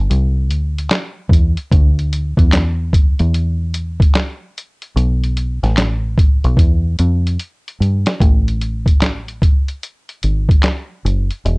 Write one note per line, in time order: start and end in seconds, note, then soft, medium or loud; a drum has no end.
0.11 0.51 C2 loud
0.11 closed hi-hat medium
0.51 0.88 D2 medium
0.51 closed hi-hat medium
0.78 closed hi-hat medium
0.90 snare loud
0.90 clap loud
0.90 closed hi-hat medium
1.29 1.54 E2 medium
1.29 kick medium
1.29 closed hi-hat medium
1.57 closed hi-hat soft
1.71 2.34 D2 loud
1.71 kick loud
1.71 closed hi-hat medium
1.99 closed hi-hat soft
2.13 closed hi-hat medium
2.37 3.15 E2 medium
2.37 kick medium
2.37 closed hi-hat soft
2.52 snare loud
2.52 clap medium
2.52 closed hi-hat medium
2.93 kick medium
2.93 closed hi-hat medium
3.19 4.11 E2 medium
3.19 closed hi-hat soft
3.34 closed hi-hat medium
3.74 closed hi-hat medium
4.00 kick loud
4.00 closed hi-hat medium
4.15 snare loud
4.15 clap medium
4.15 closed hi-hat medium
4.58 closed hi-hat medium
4.82 closed hi-hat soft
4.96 5.59 B1 loud
4.96 closed hi-hat medium
5.24 closed hi-hat soft
5.37 closed hi-hat medium
5.63 6.40 A1 medium
5.63 snare soft
5.63 closed hi-hat soft
5.77 snare loud
5.77 clap medium
5.77 closed hi-hat medium
6.18 kick loud
6.18 closed hi-hat medium
6.44 6.57 B1 medium
6.44 closed hi-hat soft
6.57 6.95 E2 loud
6.57 kick medium
6.57 closed hi-hat medium
6.99 7.36 F2 medium
6.99 closed hi-hat medium
7.27 closed hi-hat medium
7.40 closed hi-hat medium
7.68 closed hi-hat soft
7.80 8.04 G2 medium
7.80 closed hi-hat medium
8.06 snare loud
8.06 closed hi-hat soft
8.20 9.64 A1 loud
8.20 kick loud
8.20 closed hi-hat medium
8.48 closed hi-hat soft
8.61 closed hi-hat medium
8.86 kick medium
8.86 closed hi-hat soft
9.01 snare loud
9.01 clap medium
9.01 closed hi-hat medium
9.28 closed hi-hat soft
9.42 kick loud
9.42 closed hi-hat medium
9.68 closed hi-hat soft
9.83 closed hi-hat medium
10.09 closed hi-hat soft
10.23 10.61 G#1 medium
10.23 closed hi-hat medium
10.49 kick loud
10.49 closed hi-hat medium
10.63 snare loud
10.63 clap medium
10.63 closed hi-hat medium
11.05 11.28 F#1 medium
11.05 closed hi-hat medium
11.31 closed hi-hat soft
11.45 11.58 E1 loud
11.45 closed hi-hat medium